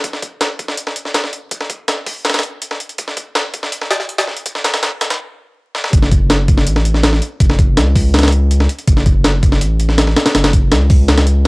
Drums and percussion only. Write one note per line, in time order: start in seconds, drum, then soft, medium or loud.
0.04 kick loud
0.04 closed hi-hat medium
0.13 snare soft
0.22 kick loud
0.22 closed hi-hat medium
0.41 snare loud
0.41 closed hi-hat medium
0.59 kick medium
0.59 closed hi-hat medium
0.68 snare medium
0.77 closed hi-hat medium
0.87 snare medium
0.96 closed hi-hat medium
1.05 snare soft
1.14 snare loud
1.14 closed hi-hat medium
1.24 snare soft
1.33 closed hi-hat medium
1.51 kick loud
1.51 closed hi-hat medium
1.61 snare medium
1.70 kick loud
1.70 closed hi-hat medium
1.88 snare loud
1.88 closed hi-hat medium
2.06 kick medium
2.06 open hi-hat medium
2.25 snare medium
2.25 closed hi-hat medium
2.30 snare medium
2.30 closed hi-hat medium
2.34 snare medium
2.34 closed hi-hat medium
2.39 snare medium
2.39 closed hi-hat medium
2.43 closed hi-hat medium
2.62 closed hi-hat medium
2.71 snare medium
2.80 closed hi-hat medium
2.89 closed hi-hat soft
2.98 kick loud
2.98 closed hi-hat medium
3.08 snare soft
3.17 kick loud
3.17 closed hi-hat medium
3.35 snare loud
3.35 closed hi-hat medium
3.54 kick medium
3.54 closed hi-hat medium
3.63 snare medium
3.72 closed hi-hat medium
3.81 snare medium
3.91 snare loud
3.91 closed hi-hat medium
4.00 snare soft
4.09 closed hi-hat medium
4.18 snare loud
4.18 closed hi-hat medium
4.27 snare soft
4.37 closed hi-hat medium
4.46 kick loud
4.46 closed hi-hat medium
4.55 snare medium
4.64 snare loud
4.64 closed hi-hat medium
4.74 snare loud
4.74 closed hi-hat medium
4.83 snare loud
4.83 closed hi-hat medium
5.01 snare loud
5.01 closed hi-hat medium
5.10 snare loud
5.10 closed hi-hat medium
5.75 snare medium
5.84 snare medium
5.93 kick loud
5.93 closed hi-hat medium
6.02 snare soft
6.12 kick medium
6.12 closed hi-hat medium
6.30 snare loud
6.30 closed hi-hat medium
6.48 kick loud
6.48 closed hi-hat medium
6.57 snare medium
6.67 closed hi-hat medium
6.76 snare medium
6.85 closed hi-hat medium
6.94 snare soft
7.03 snare loud
7.03 closed hi-hat medium
7.13 snare soft
7.22 closed hi-hat medium
7.40 kick loud
7.40 closed hi-hat medium
7.50 snare medium
7.59 kick loud
7.59 closed hi-hat medium
7.77 snare loud
7.77 closed hi-hat medium
7.96 kick medium
7.96 open hi-hat medium
8.14 snare medium
8.14 closed hi-hat medium
8.19 snare medium
8.19 closed hi-hat medium
8.23 snare medium
8.23 closed hi-hat medium
8.28 snare medium
8.28 closed hi-hat medium
8.32 closed hi-hat medium
8.51 closed hi-hat medium
8.60 snare medium
8.69 closed hi-hat medium
8.79 closed hi-hat soft
8.88 kick loud
8.88 closed hi-hat medium
8.97 snare soft
9.06 kick medium
9.06 closed hi-hat medium
9.24 snare loud
9.24 closed hi-hat medium
9.43 kick loud
9.43 closed hi-hat medium
9.52 snare medium
9.61 closed hi-hat medium
9.80 closed hi-hat medium
9.89 snare soft
9.98 snare loud
9.98 closed hi-hat medium
10.07 snare soft
10.16 snare loud
10.16 closed hi-hat medium
10.26 snare loud
10.26 closed hi-hat medium
10.35 snare loud
10.35 closed hi-hat medium
10.44 snare loud
10.44 closed hi-hat medium
10.53 kick loud
10.53 closed hi-hat medium
10.72 snare loud
10.72 closed hi-hat medium
10.90 kick loud
10.90 open hi-hat medium
11.08 snare loud
11.08 closed hi-hat medium
11.18 snare loud
11.18 closed hi-hat medium
11.27 closed hi-hat medium